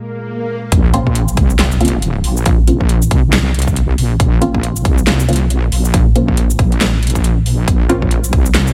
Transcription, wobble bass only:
0.72 A#1
1.37 C2
2.24 A#1
3.11 C2
3.98 A#1
4.20 A#1
4.85 C2
5.45 B1
5.72 A#1
6.59 A#1
7.68 A#1
8.33 C2

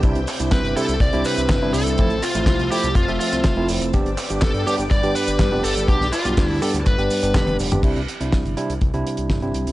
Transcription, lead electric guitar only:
0.52 B4
0.77 A4
1.01 D5
1.25 B4
1.74 A4
2.23 F4
2.47 F4
2.71 G4
2.96 F4
3.20 F4
4.42 A4
4.67 G4
4.91 D5
5.15 B4
5.64 A4
5.89 G4
6.13 F4
6.47 E4
6.62 A4
6.87 B4

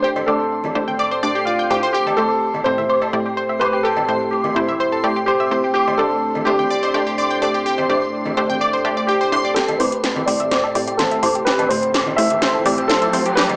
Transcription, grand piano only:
0.02 C5
0.26 A4
1.45 F4
1.93 G4
2.17 A4
2.64 C5
3.60 B4
3.83 A4
4.31 G4
4.55 E4
5.26 G4
5.74 G4
5.98 A4
6.45 G4
9.07 G4
9.54 A4
9.78 B4
10.26 D5
10.97 A4
11.45 B4
11.69 C5
12.16 E5
12.88 A4
13.35 B4

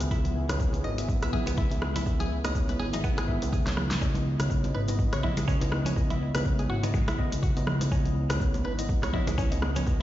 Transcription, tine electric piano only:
0.11 B3 G#4 E5
0.49 B3 G#4 C#5
0.98 B3 G#4 E5
1.33 B3 G#4 E5
1.71 B3 G#4 E5
2.06 B3 G#4 E5
2.44 B3 G#4 C#5
2.93 B3 G#4 E5
3.28 B3 G#4 E5
3.66 B3 G#4 C#5
4.01 B3 E4 D#5
4.40 B3 E4 C#5
4.88 B3 E4 D#5
5.23 B3 E4 D#5
5.61 B3 E4 D#5
5.96 B3 E4 D#5
6.35 B3 E4 C#5
6.83 B3 E4 D#5
7.18 B3 E4 D#5
7.57 B3 E4 D#5
7.92 B3 E4 D#5
8.30 B3 E4 C#5
8.79 B3 E4 D#5
9.14 B3 E4 D#5
9.52 B3 E4 D#5
9.87 B3 E4 D#5

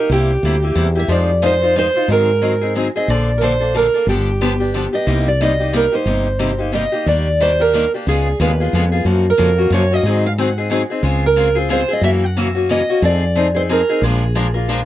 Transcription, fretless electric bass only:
0.09 C2
0.43 D2
0.76 E2
1.08 F2
2.08 G#2
3.08 A#1
4.07 G1
5.07 C2
6.05 G1
7.06 D#2
8.07 C#2
8.40 D#2
8.73 F2
9.05 F#2
9.39 F2
9.70 F#2
10.03 G#2
11.03 C#2
12.01 F#2
13.02 F2
14.02 A#1

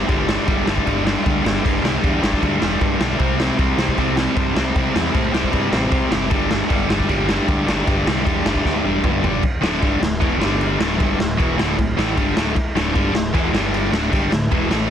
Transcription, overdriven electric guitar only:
0.07 G2 D3 G3
0.27 G2 D3 G3
0.47 G2 D3 G3
0.66 G2 D3 G3
0.85 G2 D3 G3
1.04 G2 D3 G3
1.24 G2 D3 G3
1.43 G2 D3 G3
1.64 G2 D3 G3
1.83 G2 D3 G3
2.03 G2 D3 G3
2.22 G2 D3 G3
2.41 G2 D3 G3
2.60 G2 D3 G3
2.80 G2 D3 G3
3.00 G2 D3 G3
3.19 C3 G3 C4
3.39 C3 G3 C4
3.59 C3 G3 C4
3.79 C3 G3 C4
3.98 C3 G3 C4
4.16 C3 G3 C4
4.36 C3 G3 C4
4.55 C3 G3 C4
4.75 C3 G3 C4
4.94 C3 G3 C4
5.13 C3 G3 C4
5.32 C3 G3 C4
5.51 C3 G3 C4
5.71 C3 G3 C4
5.90 C3 G3 C4
6.10 C3 G3 C4
6.30 G2 D3 G3
6.49 G2 D3 G3
6.69 G2 D3 G3
6.88 G2 D3 G3
7.09 G2 D3 G3
7.28 G2 D3 G3
7.47 G2 D3 G3
7.68 G2 D3 G3
7.87 G2 D3 G3
8.07 G2 D3 G3
8.26 G2 D3 G3
8.45 G2 D3 G3
8.65 G2 D3 G3
8.84 G2 D3 G3
9.05 G2 D3 G3
9.23 G2 D3 G3
9.61 D2 A2 D3
9.81 G2 D3 G3
10.01 D2 A2
10.21 E2 B2 E3
10.39 G2 D3 G3
10.80 D2 A2 D3
10.98 G2 D3 G3
11.19 D2 A2
11.37 E2 B2 E3
11.57 D2 A2 D3
11.77 D2 A2
11.96 A2 E3 A3
12.16 G2 D3 G3
12.36 D2 A2 D3
12.75 D2 A2 D3
12.94 G2 D3 G3
13.13 D2 A2
13.33 E2 B2 E3
13.53 G2 D3 G3
13.92 D2 A2 D3
14.12 G2 D3 G3
14.31 D2 A2
14.51 E2 B2 E3
14.70 A2 E3 A3

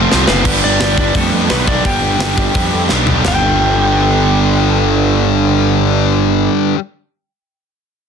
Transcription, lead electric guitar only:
0.28 B3 B4
0.64 D4 D5
0.99 D4 D5
1.16 A3 A4
1.50 B3 B4
1.67 D4 D5
1.85 G4 G5
3.28 G5

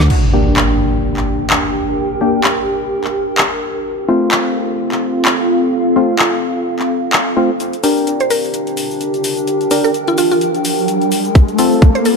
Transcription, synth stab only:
0.33 A#3 D4 G4
2.21 A#3 D4 G4
4.08 A3 C4 F4
5.96 A3 C4 F4
7.37 A3 C4 F4
7.83 D4 G4 A#4
9.71 D4 G4 A#4
11.59 C4 F4 A4

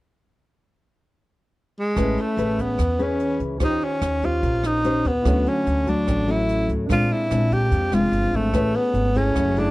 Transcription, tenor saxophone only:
1.79 G#3
2.21 A3
2.61 B3
3.03 C#4
3.64 D#4
3.84 C#4
4.25 F4
4.66 D#4
5.07 B3
5.48 C#4
5.90 D4
6.31 E4
6.92 F4
7.12 E4
7.53 G4
7.94 F4
8.36 A3
8.76 B3
9.17 C#4
9.59 D4

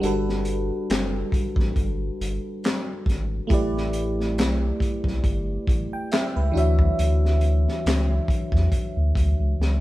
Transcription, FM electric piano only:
0.00 G3 D4 F#4
0.05 A4 B4
3.47 A3 E4 G4
3.52 B4 D5
5.93 G5
6.12 E5
6.36 B4
6.52 E3 D4 F#4
6.57 C#5 E5

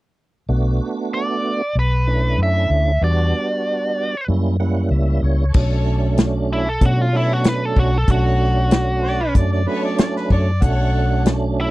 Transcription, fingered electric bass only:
0.49 B1
1.75 B1
2.38 F#2
2.70 D2
3.01 E2
4.28 F#2
4.91 C#2
5.22 C#2
5.55 B1
6.81 B2
7.77 B1
8.08 B1
9.35 F#2
10.30 F#2
10.62 B1

